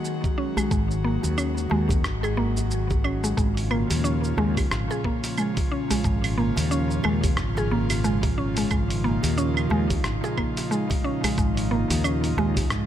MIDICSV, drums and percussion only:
0, 0, Header, 1, 3, 480
1, 0, Start_track
1, 0, Tempo, 666667
1, 513, Time_signature, 4, 2, 24, 8
1, 9261, End_track
2, 0, Start_track
2, 0, Title_t, "Djembe"
2, 179, Note_on_c, 9, 63, 53
2, 182, Note_on_c, 9, 62, 44
2, 251, Note_off_c, 9, 63, 0
2, 254, Note_off_c, 9, 62, 0
2, 410, Note_on_c, 9, 64, 81
2, 482, Note_off_c, 9, 64, 0
2, 885, Note_on_c, 9, 63, 52
2, 887, Note_on_c, 9, 62, 42
2, 957, Note_off_c, 9, 63, 0
2, 959, Note_off_c, 9, 62, 0
2, 1221, Note_on_c, 9, 62, 47
2, 1227, Note_on_c, 9, 63, 57
2, 1293, Note_off_c, 9, 62, 0
2, 1299, Note_off_c, 9, 63, 0
2, 1361, Note_on_c, 9, 64, 88
2, 1433, Note_off_c, 9, 64, 0
2, 1613, Note_on_c, 9, 62, 62
2, 1685, Note_off_c, 9, 62, 0
2, 1708, Note_on_c, 9, 63, 55
2, 1780, Note_off_c, 9, 63, 0
2, 1855, Note_on_c, 9, 63, 55
2, 1927, Note_off_c, 9, 63, 0
2, 2092, Note_on_c, 9, 62, 46
2, 2093, Note_on_c, 9, 64, 76
2, 2164, Note_off_c, 9, 62, 0
2, 2165, Note_off_c, 9, 64, 0
2, 2333, Note_on_c, 9, 63, 52
2, 2405, Note_off_c, 9, 63, 0
2, 2806, Note_on_c, 9, 63, 50
2, 2810, Note_on_c, 9, 62, 47
2, 2878, Note_off_c, 9, 63, 0
2, 2882, Note_off_c, 9, 62, 0
2, 3149, Note_on_c, 9, 63, 58
2, 3156, Note_on_c, 9, 62, 49
2, 3221, Note_off_c, 9, 63, 0
2, 3228, Note_off_c, 9, 62, 0
2, 3295, Note_on_c, 9, 64, 86
2, 3367, Note_off_c, 9, 64, 0
2, 3532, Note_on_c, 9, 62, 50
2, 3604, Note_off_c, 9, 62, 0
2, 3634, Note_on_c, 9, 63, 55
2, 3706, Note_off_c, 9, 63, 0
2, 3773, Note_on_c, 9, 62, 43
2, 3845, Note_off_c, 9, 62, 0
2, 4013, Note_on_c, 9, 62, 44
2, 4013, Note_on_c, 9, 63, 53
2, 4085, Note_off_c, 9, 62, 0
2, 4085, Note_off_c, 9, 63, 0
2, 4256, Note_on_c, 9, 64, 76
2, 4328, Note_off_c, 9, 64, 0
2, 4723, Note_on_c, 9, 63, 49
2, 4729, Note_on_c, 9, 62, 49
2, 4795, Note_off_c, 9, 63, 0
2, 4801, Note_off_c, 9, 62, 0
2, 5064, Note_on_c, 9, 62, 46
2, 5067, Note_on_c, 9, 63, 53
2, 5136, Note_off_c, 9, 62, 0
2, 5139, Note_off_c, 9, 63, 0
2, 5210, Note_on_c, 9, 64, 83
2, 5282, Note_off_c, 9, 64, 0
2, 5451, Note_on_c, 9, 62, 66
2, 5523, Note_off_c, 9, 62, 0
2, 5553, Note_on_c, 9, 63, 54
2, 5625, Note_off_c, 9, 63, 0
2, 5691, Note_on_c, 9, 63, 51
2, 5763, Note_off_c, 9, 63, 0
2, 5925, Note_on_c, 9, 64, 67
2, 5926, Note_on_c, 9, 62, 47
2, 5997, Note_off_c, 9, 64, 0
2, 5998, Note_off_c, 9, 62, 0
2, 6645, Note_on_c, 9, 62, 49
2, 6648, Note_on_c, 9, 63, 50
2, 6717, Note_off_c, 9, 62, 0
2, 6720, Note_off_c, 9, 63, 0
2, 6982, Note_on_c, 9, 63, 55
2, 6986, Note_on_c, 9, 62, 47
2, 7054, Note_off_c, 9, 63, 0
2, 7058, Note_off_c, 9, 62, 0
2, 7130, Note_on_c, 9, 64, 79
2, 7202, Note_off_c, 9, 64, 0
2, 7371, Note_on_c, 9, 62, 63
2, 7443, Note_off_c, 9, 62, 0
2, 7474, Note_on_c, 9, 63, 57
2, 7546, Note_off_c, 9, 63, 0
2, 7618, Note_on_c, 9, 62, 55
2, 7690, Note_off_c, 9, 62, 0
2, 7846, Note_on_c, 9, 62, 50
2, 7850, Note_on_c, 9, 63, 50
2, 7918, Note_off_c, 9, 62, 0
2, 7922, Note_off_c, 9, 63, 0
2, 8092, Note_on_c, 9, 64, 67
2, 8164, Note_off_c, 9, 64, 0
2, 8573, Note_on_c, 9, 62, 46
2, 8573, Note_on_c, 9, 63, 60
2, 8645, Note_off_c, 9, 62, 0
2, 8645, Note_off_c, 9, 63, 0
2, 8914, Note_on_c, 9, 62, 56
2, 8918, Note_on_c, 9, 63, 63
2, 8986, Note_off_c, 9, 62, 0
2, 8990, Note_off_c, 9, 63, 0
2, 9051, Note_on_c, 9, 64, 77
2, 9123, Note_off_c, 9, 64, 0
2, 9261, End_track
3, 0, Start_track
3, 0, Title_t, "Drums"
3, 33, Note_on_c, 9, 82, 54
3, 105, Note_off_c, 9, 82, 0
3, 173, Note_on_c, 9, 36, 101
3, 174, Note_on_c, 9, 82, 34
3, 245, Note_off_c, 9, 36, 0
3, 246, Note_off_c, 9, 82, 0
3, 415, Note_on_c, 9, 75, 75
3, 416, Note_on_c, 9, 82, 72
3, 487, Note_off_c, 9, 75, 0
3, 488, Note_off_c, 9, 82, 0
3, 513, Note_on_c, 9, 36, 113
3, 513, Note_on_c, 9, 82, 52
3, 585, Note_off_c, 9, 36, 0
3, 585, Note_off_c, 9, 82, 0
3, 654, Note_on_c, 9, 82, 34
3, 726, Note_off_c, 9, 82, 0
3, 893, Note_on_c, 9, 82, 65
3, 965, Note_off_c, 9, 82, 0
3, 993, Note_on_c, 9, 75, 71
3, 993, Note_on_c, 9, 82, 51
3, 1065, Note_off_c, 9, 75, 0
3, 1065, Note_off_c, 9, 82, 0
3, 1133, Note_on_c, 9, 82, 32
3, 1205, Note_off_c, 9, 82, 0
3, 1372, Note_on_c, 9, 36, 96
3, 1372, Note_on_c, 9, 82, 62
3, 1444, Note_off_c, 9, 36, 0
3, 1444, Note_off_c, 9, 82, 0
3, 1472, Note_on_c, 9, 36, 53
3, 1472, Note_on_c, 9, 37, 77
3, 1472, Note_on_c, 9, 82, 57
3, 1544, Note_off_c, 9, 36, 0
3, 1544, Note_off_c, 9, 37, 0
3, 1544, Note_off_c, 9, 82, 0
3, 1612, Note_on_c, 9, 75, 70
3, 1613, Note_on_c, 9, 82, 31
3, 1684, Note_off_c, 9, 75, 0
3, 1685, Note_off_c, 9, 82, 0
3, 1850, Note_on_c, 9, 82, 67
3, 1922, Note_off_c, 9, 82, 0
3, 1951, Note_on_c, 9, 82, 56
3, 2023, Note_off_c, 9, 82, 0
3, 2091, Note_on_c, 9, 82, 34
3, 2093, Note_on_c, 9, 36, 97
3, 2163, Note_off_c, 9, 82, 0
3, 2165, Note_off_c, 9, 36, 0
3, 2193, Note_on_c, 9, 75, 74
3, 2265, Note_off_c, 9, 75, 0
3, 2332, Note_on_c, 9, 82, 72
3, 2404, Note_off_c, 9, 82, 0
3, 2431, Note_on_c, 9, 36, 110
3, 2433, Note_on_c, 9, 82, 52
3, 2503, Note_off_c, 9, 36, 0
3, 2505, Note_off_c, 9, 82, 0
3, 2572, Note_on_c, 9, 46, 40
3, 2573, Note_on_c, 9, 82, 33
3, 2644, Note_off_c, 9, 46, 0
3, 2645, Note_off_c, 9, 82, 0
3, 2670, Note_on_c, 9, 75, 75
3, 2742, Note_off_c, 9, 75, 0
3, 2812, Note_on_c, 9, 46, 52
3, 2812, Note_on_c, 9, 82, 63
3, 2884, Note_off_c, 9, 46, 0
3, 2884, Note_off_c, 9, 82, 0
3, 2912, Note_on_c, 9, 82, 54
3, 2984, Note_off_c, 9, 82, 0
3, 3053, Note_on_c, 9, 82, 33
3, 3125, Note_off_c, 9, 82, 0
3, 3292, Note_on_c, 9, 36, 96
3, 3293, Note_on_c, 9, 46, 50
3, 3293, Note_on_c, 9, 75, 69
3, 3293, Note_on_c, 9, 82, 61
3, 3364, Note_off_c, 9, 36, 0
3, 3365, Note_off_c, 9, 46, 0
3, 3365, Note_off_c, 9, 75, 0
3, 3365, Note_off_c, 9, 82, 0
3, 3395, Note_on_c, 9, 37, 74
3, 3395, Note_on_c, 9, 82, 55
3, 3467, Note_off_c, 9, 37, 0
3, 3467, Note_off_c, 9, 82, 0
3, 3533, Note_on_c, 9, 82, 32
3, 3605, Note_off_c, 9, 82, 0
3, 3632, Note_on_c, 9, 36, 59
3, 3704, Note_off_c, 9, 36, 0
3, 3771, Note_on_c, 9, 46, 54
3, 3771, Note_on_c, 9, 82, 65
3, 3843, Note_off_c, 9, 46, 0
3, 3843, Note_off_c, 9, 82, 0
3, 3870, Note_on_c, 9, 75, 69
3, 3871, Note_on_c, 9, 82, 53
3, 3942, Note_off_c, 9, 75, 0
3, 3943, Note_off_c, 9, 82, 0
3, 4010, Note_on_c, 9, 46, 45
3, 4011, Note_on_c, 9, 82, 36
3, 4012, Note_on_c, 9, 36, 94
3, 4082, Note_off_c, 9, 46, 0
3, 4083, Note_off_c, 9, 82, 0
3, 4084, Note_off_c, 9, 36, 0
3, 4253, Note_on_c, 9, 46, 56
3, 4253, Note_on_c, 9, 82, 68
3, 4325, Note_off_c, 9, 46, 0
3, 4325, Note_off_c, 9, 82, 0
3, 4351, Note_on_c, 9, 36, 105
3, 4352, Note_on_c, 9, 82, 51
3, 4423, Note_off_c, 9, 36, 0
3, 4424, Note_off_c, 9, 82, 0
3, 4493, Note_on_c, 9, 46, 45
3, 4493, Note_on_c, 9, 75, 79
3, 4493, Note_on_c, 9, 82, 31
3, 4565, Note_off_c, 9, 46, 0
3, 4565, Note_off_c, 9, 75, 0
3, 4565, Note_off_c, 9, 82, 0
3, 4734, Note_on_c, 9, 46, 51
3, 4734, Note_on_c, 9, 82, 59
3, 4806, Note_off_c, 9, 46, 0
3, 4806, Note_off_c, 9, 82, 0
3, 4833, Note_on_c, 9, 82, 48
3, 4905, Note_off_c, 9, 82, 0
3, 4972, Note_on_c, 9, 82, 29
3, 5044, Note_off_c, 9, 82, 0
3, 5068, Note_on_c, 9, 75, 80
3, 5140, Note_off_c, 9, 75, 0
3, 5210, Note_on_c, 9, 46, 55
3, 5210, Note_on_c, 9, 82, 58
3, 5211, Note_on_c, 9, 36, 94
3, 5282, Note_off_c, 9, 46, 0
3, 5282, Note_off_c, 9, 82, 0
3, 5283, Note_off_c, 9, 36, 0
3, 5306, Note_on_c, 9, 37, 76
3, 5307, Note_on_c, 9, 82, 54
3, 5311, Note_on_c, 9, 36, 52
3, 5378, Note_off_c, 9, 37, 0
3, 5379, Note_off_c, 9, 82, 0
3, 5383, Note_off_c, 9, 36, 0
3, 5449, Note_on_c, 9, 82, 32
3, 5521, Note_off_c, 9, 82, 0
3, 5687, Note_on_c, 9, 46, 53
3, 5687, Note_on_c, 9, 75, 83
3, 5688, Note_on_c, 9, 82, 62
3, 5759, Note_off_c, 9, 46, 0
3, 5759, Note_off_c, 9, 75, 0
3, 5760, Note_off_c, 9, 82, 0
3, 5790, Note_on_c, 9, 82, 52
3, 5862, Note_off_c, 9, 82, 0
3, 5926, Note_on_c, 9, 46, 48
3, 5927, Note_on_c, 9, 82, 34
3, 5931, Note_on_c, 9, 36, 93
3, 5998, Note_off_c, 9, 46, 0
3, 5999, Note_off_c, 9, 82, 0
3, 6003, Note_off_c, 9, 36, 0
3, 6168, Note_on_c, 9, 46, 56
3, 6168, Note_on_c, 9, 82, 65
3, 6240, Note_off_c, 9, 46, 0
3, 6240, Note_off_c, 9, 82, 0
3, 6269, Note_on_c, 9, 75, 78
3, 6269, Note_on_c, 9, 82, 47
3, 6272, Note_on_c, 9, 36, 106
3, 6341, Note_off_c, 9, 75, 0
3, 6341, Note_off_c, 9, 82, 0
3, 6344, Note_off_c, 9, 36, 0
3, 6411, Note_on_c, 9, 46, 48
3, 6412, Note_on_c, 9, 82, 31
3, 6483, Note_off_c, 9, 46, 0
3, 6484, Note_off_c, 9, 82, 0
3, 6651, Note_on_c, 9, 46, 54
3, 6652, Note_on_c, 9, 82, 61
3, 6723, Note_off_c, 9, 46, 0
3, 6724, Note_off_c, 9, 82, 0
3, 6751, Note_on_c, 9, 82, 47
3, 6823, Note_off_c, 9, 82, 0
3, 6890, Note_on_c, 9, 75, 81
3, 6891, Note_on_c, 9, 82, 29
3, 6962, Note_off_c, 9, 75, 0
3, 6963, Note_off_c, 9, 82, 0
3, 7131, Note_on_c, 9, 46, 53
3, 7131, Note_on_c, 9, 82, 57
3, 7133, Note_on_c, 9, 36, 95
3, 7203, Note_off_c, 9, 46, 0
3, 7203, Note_off_c, 9, 82, 0
3, 7205, Note_off_c, 9, 36, 0
3, 7230, Note_on_c, 9, 37, 75
3, 7230, Note_on_c, 9, 82, 53
3, 7302, Note_off_c, 9, 37, 0
3, 7302, Note_off_c, 9, 82, 0
3, 7374, Note_on_c, 9, 82, 33
3, 7446, Note_off_c, 9, 82, 0
3, 7470, Note_on_c, 9, 75, 80
3, 7472, Note_on_c, 9, 36, 54
3, 7542, Note_off_c, 9, 75, 0
3, 7544, Note_off_c, 9, 36, 0
3, 7612, Note_on_c, 9, 46, 52
3, 7613, Note_on_c, 9, 82, 60
3, 7684, Note_off_c, 9, 46, 0
3, 7685, Note_off_c, 9, 82, 0
3, 7716, Note_on_c, 9, 82, 49
3, 7788, Note_off_c, 9, 82, 0
3, 7853, Note_on_c, 9, 36, 93
3, 7853, Note_on_c, 9, 46, 48
3, 7854, Note_on_c, 9, 82, 32
3, 7925, Note_off_c, 9, 36, 0
3, 7925, Note_off_c, 9, 46, 0
3, 7926, Note_off_c, 9, 82, 0
3, 8094, Note_on_c, 9, 46, 55
3, 8094, Note_on_c, 9, 75, 88
3, 8094, Note_on_c, 9, 82, 63
3, 8166, Note_off_c, 9, 46, 0
3, 8166, Note_off_c, 9, 75, 0
3, 8166, Note_off_c, 9, 82, 0
3, 8191, Note_on_c, 9, 82, 50
3, 8192, Note_on_c, 9, 36, 104
3, 8263, Note_off_c, 9, 82, 0
3, 8264, Note_off_c, 9, 36, 0
3, 8333, Note_on_c, 9, 46, 48
3, 8333, Note_on_c, 9, 82, 34
3, 8405, Note_off_c, 9, 46, 0
3, 8405, Note_off_c, 9, 82, 0
3, 8571, Note_on_c, 9, 46, 55
3, 8572, Note_on_c, 9, 82, 58
3, 8643, Note_off_c, 9, 46, 0
3, 8644, Note_off_c, 9, 82, 0
3, 8672, Note_on_c, 9, 75, 77
3, 8672, Note_on_c, 9, 82, 49
3, 8744, Note_off_c, 9, 75, 0
3, 8744, Note_off_c, 9, 82, 0
3, 8811, Note_on_c, 9, 46, 32
3, 8812, Note_on_c, 9, 82, 32
3, 8883, Note_off_c, 9, 46, 0
3, 8884, Note_off_c, 9, 82, 0
3, 9050, Note_on_c, 9, 46, 57
3, 9050, Note_on_c, 9, 82, 60
3, 9052, Note_on_c, 9, 36, 96
3, 9122, Note_off_c, 9, 46, 0
3, 9122, Note_off_c, 9, 82, 0
3, 9124, Note_off_c, 9, 36, 0
3, 9147, Note_on_c, 9, 37, 76
3, 9148, Note_on_c, 9, 82, 54
3, 9152, Note_on_c, 9, 36, 54
3, 9219, Note_off_c, 9, 37, 0
3, 9220, Note_off_c, 9, 82, 0
3, 9224, Note_off_c, 9, 36, 0
3, 9261, End_track
0, 0, End_of_file